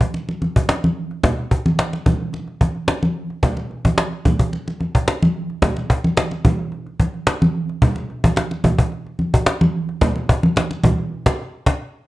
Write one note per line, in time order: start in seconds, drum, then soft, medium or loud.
0.01 cajon bass medium
0.14 cajon slap medium
0.14 muted conga soft
0.29 cajon slap soft
0.29 muted conga soft
0.42 cajon slap soft
0.42 high conga medium
0.56 cajon bass loud
0.69 cajon slap loud
0.69 muted conga soft
0.83 cajon slap soft
0.83 high conga medium
1.11 cajon slap soft
1.23 cajon bass loud
1.23 low conga medium
1.38 cajon slap soft
1.51 cajon bass loud
1.66 cajon slap soft
1.66 high conga medium
1.79 cajon slap loud
1.93 cajon slap soft
1.93 muted conga soft
2.06 cajon bass medium
2.06 high conga medium
2.06 low conga medium
2.20 cajon slap soft
2.33 cajon slap soft
2.33 muted conga soft
2.48 cajon slap soft
2.61 cajon bass medium
2.61 cajon slap soft
2.61 high conga medium
2.75 cajon slap soft
2.88 cajon slap loud
2.88 muted conga soft
3.02 cajon slap soft
3.02 high conga medium
3.30 cajon slap soft
3.43 cajon bass loud
3.43 muted conga soft
3.43 low conga medium
3.57 cajon slap soft
3.57 muted conga soft
3.71 cajon slap soft
3.85 cajon bass loud
3.85 high conga medium
3.98 cajon slap loud
3.98 muted conga soft
4.13 cajon slap soft
4.25 cajon bass medium
4.25 high conga medium
4.25 low conga medium
4.39 cajon bass medium
4.53 cajon slap soft
4.53 muted conga soft
4.67 cajon slap soft
4.67 muted conga soft
4.80 cajon slap soft
4.80 high conga medium
4.95 cajon bass medium
5.08 cajon slap loud
5.22 cajon slap soft
5.22 muted conga soft
5.22 high conga medium
5.50 cajon slap soft
5.62 cajon bass loud
5.62 muted conga soft
5.62 low conga medium
5.76 cajon slap soft
5.76 muted conga soft
5.90 cajon bass loud
6.04 cajon slap soft
6.04 high conga medium
6.17 cajon slap loud
6.17 muted conga soft
6.31 cajon slap soft
6.31 muted conga soft
6.45 cajon bass medium
6.45 high conga medium
6.45 low conga medium
6.59 cajon slap soft
6.72 cajon slap soft
6.86 cajon slap soft
7.00 cajon bass medium
7.00 cajon slap soft
7.00 high conga medium
7.14 cajon slap soft
7.27 cajon slap loud
7.41 cajon slap soft
7.41 muted conga soft
7.41 high conga medium
7.69 cajon slap soft
7.82 cajon bass loud
7.82 low conga medium
7.96 cajon slap soft
7.96 muted conga soft
8.10 cajon slap soft
8.24 cajon bass loud
8.24 high conga medium
8.36 cajon slap loud
8.36 muted conga soft
8.51 cajon slap soft
8.51 muted conga soft
8.64 cajon bass medium
8.64 high conga medium
8.64 low conga medium
8.78 cajon bass loud
8.92 cajon slap soft
9.06 cajon slap soft
9.19 cajon slap soft
9.19 high conga medium
9.34 cajon bass loud
9.46 cajon slap loud
9.61 cajon slap soft
9.61 muted conga soft
9.61 high conga medium
9.89 cajon slap soft
10.01 cajon bass loud
10.01 low conga medium
10.16 cajon slap soft
10.16 muted conga soft
10.29 cajon bass loud
10.43 cajon slap soft
10.43 high conga medium
10.56 cajon slap loud
10.56 muted conga soft
10.71 cajon slap soft
10.71 muted conga soft
10.84 cajon bass loud
10.84 high conga medium
10.84 low conga medium
10.98 cajon slap soft
11.26 cajon bass loud
11.26 cajon slap loud
11.66 cajon bass loud
11.66 cajon slap loud